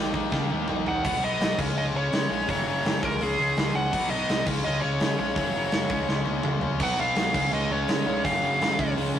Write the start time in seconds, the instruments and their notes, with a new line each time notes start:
Already playing: picked electric bass A#1, distorted electric guitar D#3 A#3 D#4
0.13 distorted electric guitar D#3 A#3 D#4, kick
0.32 picked electric bass C#3, distorted electric guitar D#3 A#3 D#4, kick, snare
0.50 picked electric bass D#2, distorted electric guitar D#3 A#3 D#4, high tom
0.68 picked electric bass A#1, distorted electric guitar D#3 A#3 D#4, mid tom
0.86 distorted electric guitar D#3 A#3 D#4, lead electric guitar F#5, floor tom
1.04 picked electric bass B1, distorted electric guitar B2 F#3 B3, kick, crash
1.21 picked electric bass B1, distorted electric guitar B2 F#3 B3, lead electric guitar D#5
1.39 picked electric bass B1, distorted electric guitar B2 F#3 B3, snare, open hi-hat
1.59 picked electric bass C#2, distorted electric guitar C#3 G#3 C#4, kick, crash
1.74 picked electric bass C#2, distorted electric guitar C#3 G#3 C#4, lead electric guitar D#5
1.93 picked electric bass C#2, distorted electric guitar C#3 G#3 C#4, lead electric guitar C#5
2.11 picked electric bass C#3, distorted electric guitar C#3 G#3 C#4, snare, open hi-hat
2.30 picked electric bass A#1, distorted electric guitar C#3 G#3 C#4
2.49 picked electric bass F#1, distorted electric guitar F#2 C#3 F#3, lead electric guitar C#5, kick, open hi-hat
2.66 picked electric bass F#1, distorted electric guitar F#2 C#3 F#3
2.83 picked electric bass F#1, distorted electric guitar F#2 C#3 F#3, snare, open hi-hat
3.02 picked electric bass C#2, distorted electric guitar C#3 G#3 C#4, lead electric guitar A#4, kick
3.20 picked electric bass C#2, distorted electric guitar C#3 G#3 C#4, lead electric guitar G#4, open hi-hat
3.38 picked electric bass C#2, distorted electric guitar C#3 G#3 C#4
3.57 picked electric bass C#2, distorted electric guitar C#3 G#3 C#4, snare, open hi-hat
3.74 picked electric bass C#2, distorted electric guitar C#3 G#3 C#4, lead electric guitar F#5
3.93 picked electric bass B1, distorted electric guitar B2 F#3 B3, kick, crash
4.10 picked electric bass B1, distorted electric guitar B2 F#3 B3, lead electric guitar D#5
4.29 picked electric bass C2, distorted electric guitar B2 F#3 B3, snare, open hi-hat
4.46 picked electric bass C#2, distorted electric guitar C#3 G#3 C#4, kick, crash
4.65 picked electric bass C#2, distorted electric guitar C#3 G#3 C#4, lead electric guitar D#5
4.81 picked electric bass C#2, distorted electric guitar C#3 G#3 C#4, lead electric guitar C#5
5.00 distorted electric guitar C#3 G#3 C#4, picked electric bass C#3, snare, open hi-hat
5.19 picked electric bass A#1, distorted electric guitar C#3 G#3 C#4, lead electric guitar C#5
5.36 picked electric bass F#1, distorted electric guitar F#2 C#3 F#3, kick, open hi-hat
5.55 picked electric bass F#1, distorted electric guitar F#2 C#3 F#3
5.71 picked electric bass F#1, distorted electric guitar F#2 C#3 F#3, snare, open hi-hat
5.90 picked electric bass C#2, distorted electric guitar C#3 G#3 C#4, kick
6.08 picked electric bass C#2, distorted electric guitar C#3 G#3 C#4, snare
6.25 picked electric bass C#2, distorted electric guitar C#3 G#3 C#4, high tom
6.43 picked electric bass C#2, distorted electric guitar C#3 G#3 C#4, mid tom
6.61 picked electric bass C#2, distorted electric guitar C#3 G#3 C#4, floor tom
6.80 picked electric bass B1, distorted electric guitar B2 F#3 B3, lead electric guitar F#5, kick, crash
6.98 picked electric bass B1, distorted electric guitar B2 F#3 B3, lead electric guitar F5
7.16 picked electric bass B1, distorted electric guitar B2 F#3 B3, snare, open hi-hat
7.34 picked electric bass C#2, distorted electric guitar C#3 G#3 C#4, kick, crash
7.52 picked electric bass C#2, distorted electric guitar C#3 G#3 C#4, lead electric guitar D#5
7.70 picked electric bass C#2, distorted electric guitar C#3 G#3 C#4, lead electric guitar C#5
7.88 picked electric bass C#3, distorted electric guitar C#3 G#3 C#4, snare, open hi-hat
8.06 picked electric bass A#1, distorted electric guitar C#3 G#3 C#4
8.24 picked electric bass F#1, distorted electric guitar F#2 C#3 F#3, lead electric guitar F5, kick, open hi-hat
8.42 picked electric bass F#1, distorted electric guitar F#2 C#3 F#3
8.60 picked electric bass F#1, distorted electric guitar F#2 C#3 F#3, snare, open hi-hat
8.78 picked electric bass C#2, distorted electric guitar C#3 G#3 C#4, kick
8.97 picked electric bass C#2, distorted electric guitar C#3 G#3 C#4, open hi-hat
9.14 picked electric bass C#2, distorted electric guitar C#3 G#3 C#4